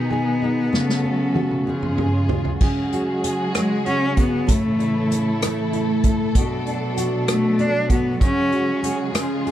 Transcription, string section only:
Already playing: B2 D#3 D#4 G#4
0.73 C#3 F#3 A3 F#4 A4
1.67 C#3 F3 G#3 F4 G#4
2.61 C#3 F#3 G#3 F#4 G#4
4.49 E3 A3 E4 A4
6.35 B2 F#3 D4
8.20 C#3 G#3 F#4 G#4
9.15 F3 F4

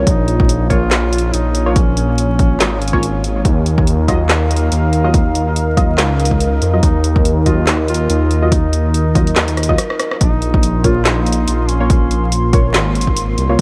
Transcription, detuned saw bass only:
0.07 A#1
1.33 A#1
2.61 G#1
3.45 D#2
4.72 D#2
5.98 C#2
6.62 F2
6.83 D#2
8.10 D#2
9.36 D#2
10.21 A#1
11.48 A#1
12.75 G#1
13.38 C2

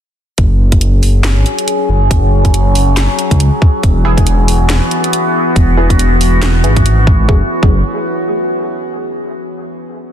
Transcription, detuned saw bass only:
0.38 F#1
1.37 G#1
1.89 F#1
2.11 F#1
3.31 C#2
3.83 E1
5.56 E1
6.64 G#1
7.19 G#1
7.29 F#1
7.63 F#1

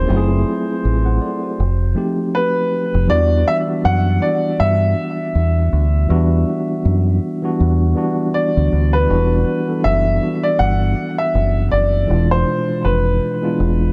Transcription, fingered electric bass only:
0.10 F#1
0.85 A1
1.60 F1
2.94 F1
3.10 E2
3.85 F#2
4.60 G2
5.35 E2
5.73 D2
6.10 E2
6.85 F#2
7.60 E2
8.57 D2
8.73 D2
9.10 E1
9.85 F#1
10.60 G1
11.35 F#1
11.73 F#1
12.10 E1
12.85 F1
13.60 E1

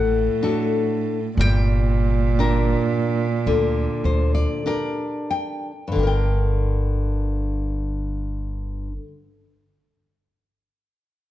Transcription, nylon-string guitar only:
Already playing: A3
0.43 D4 F#4 A4
1.39 G3
2.39 D4 G4 A#4
3.47 D3
4.05 C5
4.35 D5
4.66 D4 G4 A#4 D5
5.31 G5
5.88 G2
5.92 D3 D4
5.99 G4
6.03 A#4 G5

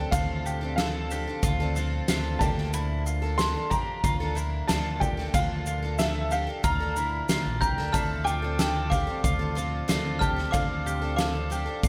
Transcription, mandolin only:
Already playing: G4
0.13 F4
0.46 G4
0.78 A4
1.11 G4
1.44 F4
1.76 F4
2.09 F4
2.41 G4
2.74 E4
3.06 F4
3.39 A4
3.71 G4
4.04 F4
4.36 E4
4.68 F4
5.01 G4
5.34 F4
5.67 F4
5.99 A4
6.32 G4
6.64 F4
6.97 E4
7.29 F4
7.62 G4
7.95 E4
8.27 F4
8.59 A4
8.92 G4
9.24 F4
9.56 F4
9.89 F4
10.22 G4
10.54 F4
10.86 G4
11.19 A4
11.52 G4
11.84 F4

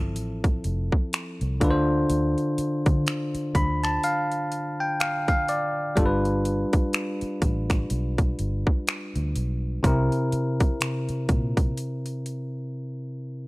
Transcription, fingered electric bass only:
Already playing: G1
0.17 A1
0.65 F1
1.41 C2
1.62 D2
2.10 D2
2.58 muted fingered electric bass stroke
2.86 D3
3.35 muted fingered electric bass stroke
3.55 D2
5.97 G1
6.74 muted fingered electric bass stroke
7.22 muted fingered electric bass stroke
7.42 A1
7.91 B1
8.39 G1
9.16 D2
9.36 B1
9.84 C2
10.33 muted fingered electric bass stroke
10.61 C3
11.09 muted fingered electric bass stroke
11.29 A#2

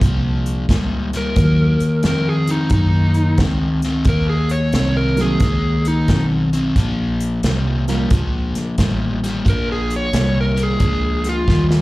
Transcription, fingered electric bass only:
0.01 C2
0.69 C#2
1.36 D#2
1.81 muted fingered electric bass stroke
2.05 F2
2.71 F#2
3.38 C#2
4.06 D#2
4.73 C2
5.41 C#2
6.09 B1
6.76 A#1
7.44 C2
8.11 C#2
8.56 muted fingered electric bass stroke
8.78 A1
9.46 A#1
10.14 C2
10.81 C#2
11.48 D#2

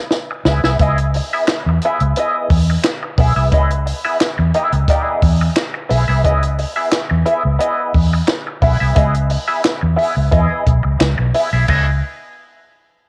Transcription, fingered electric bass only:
0.45 C#2
0.64 C2
0.80 C#2
1.66 E2
2.01 C#2
2.50 E2
3.18 B1
3.36 C2
3.53 C#2
4.39 E2
4.73 C#2
5.23 E2
5.91 B1
6.09 C2
6.25 C#2
7.11 E2
7.45 C#2
7.95 E2
8.62 B1
8.81 C2
8.96 C#2
9.83 E2
10.17 C#2
10.32 E2
10.67 B1
10.85 C#2
11.00 C#2
11.19 B1
11.53 B1
11.69 C#2

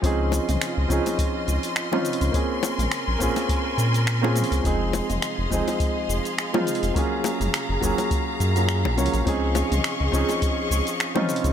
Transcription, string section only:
0.03 F4 D#5 C6
2.35 A#4 G#5
4.65 G#4 D#5 F5
6.96 A#5
9.26 G#4 D#5 C#6

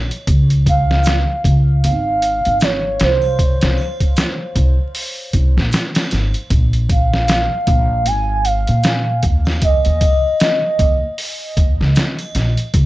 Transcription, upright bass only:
0.28 C#2
1.45 C#2
1.84 G#1
2.46 G#1
3.01 C2
3.63 C2
4.56 C2
5.34 C2
5.57 A#1
6.12 G#1
6.51 A#1
7.68 A#1
8.07 G#1
8.69 A#2
9.23 D#2
9.86 D#2
10.79 D#2
11.57 D#2
11.80 C#2
12.35 A#1
12.74 C#2

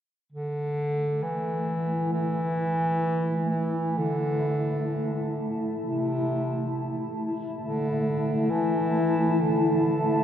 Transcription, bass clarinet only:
0.32 D3
1.23 E3
2.13 E3
3.49 E3
3.97 D3
5.80 C3
7.62 D3
8.50 E3
9.41 D3

